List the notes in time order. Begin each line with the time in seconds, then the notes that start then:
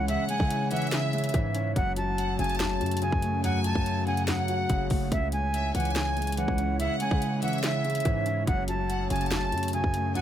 Already playing: C#2 C#3 E3 G#3 C#4 E4 C#5
0.08 C#3 E5 F#5, closed hi-hat
0.29 G#3 G#5, closed hi-hat
0.40 C#3, kick
0.50 closed hi-hat
0.71 E3 E5 F#5, closed hi-hat, open hi-hat
0.76 closed hi-hat
0.82 closed hi-hat
0.87 closed hi-hat
0.92 C#3 E5, snare, clap, closed hi-hat
1.13 G#3, closed hi-hat
1.18 closed hi-hat
1.24 closed hi-hat
1.29 closed hi-hat
1.34 G#2 E3, kick, closed hi-hat
1.55 C#4, closed hi-hat
1.76 F#1 F#2 A3 C#4 F#4 C#5 F#5, kick, closed hi-hat
1.96 F#3 A5, closed hi-hat
2.18 F#5, closed hi-hat
2.39 F#1 C#3 G#5 A5, closed hi-hat
2.44 closed hi-hat
2.49 closed hi-hat
2.55 closed hi-hat
2.60 F#2 A5, snare, clap, closed hi-hat
2.81 F#2 F#3, closed hi-hat
2.86 closed hi-hat
2.91 closed hi-hat
2.97 closed hi-hat
3.02 C#3 G#5, closed hi-hat
3.12 F#2, kick
3.22 A3, closed hi-hat
3.44 F#2 F#5 G#5, closed hi-hat
3.64 F#3 A5, closed hi-hat
3.75 F#2, kick
3.86 closed hi-hat
4.07 C#3 F#5 G#5, closed hi-hat
4.17 closed hi-hat
4.28 F#2 F#5, snare, clap, closed hi-hat
4.48 F#3, closed hi-hat
4.70 F#1 C#3, kick, closed hi-hat
4.90 F#1 A3, kick, open hi-hat
5.12 C#2 C#3 G#3 C#4 E4 E5, kick, closed hi-hat
5.32 G#3 G#5, closed hi-hat
5.54 E5, closed hi-hat
5.75 C#2 E3 F#5 G#5, closed hi-hat
5.80 closed hi-hat
5.85 closed hi-hat
5.90 closed hi-hat
5.96 C#3 G#5, snare, clap, closed hi-hat
6.17 G#3, closed hi-hat
6.22 closed hi-hat
6.27 closed hi-hat
6.32 closed hi-hat
6.37 E3 F#5, closed hi-hat
6.48 C#2, kick
6.58 C#4, closed hi-hat
6.79 C#3 E5 F#5, closed hi-hat
7.00 G#3 G#5, closed hi-hat
7.11 C#3, kick
7.22 closed hi-hat
7.42 E3 E5 F#5, closed hi-hat, open hi-hat
7.48 closed hi-hat
7.53 closed hi-hat
7.58 closed hi-hat
7.63 C#3 E5, snare, clap, closed hi-hat
7.85 G#3, closed hi-hat
7.90 closed hi-hat
7.95 closed hi-hat
8.00 closed hi-hat
8.05 G#2 E3, kick, closed hi-hat
8.26 C#4, closed hi-hat
8.47 F#1 F#2 A3 F#4 F#5, kick, closed hi-hat
8.68 F#3 A5, closed hi-hat
8.89 F#5, closed hi-hat
9.10 F#1 C#3 G#5 A5, closed hi-hat
9.16 closed hi-hat
9.21 closed hi-hat
9.26 closed hi-hat
9.31 F#2 A5, snare, clap, closed hi-hat
9.52 F#2 F#3, closed hi-hat
9.58 closed hi-hat
9.63 closed hi-hat
9.68 closed hi-hat
9.73 C#3 G#5, closed hi-hat
9.84 F#2, kick
9.94 A3, closed hi-hat
10.15 F#2 F#5 G#5, closed hi-hat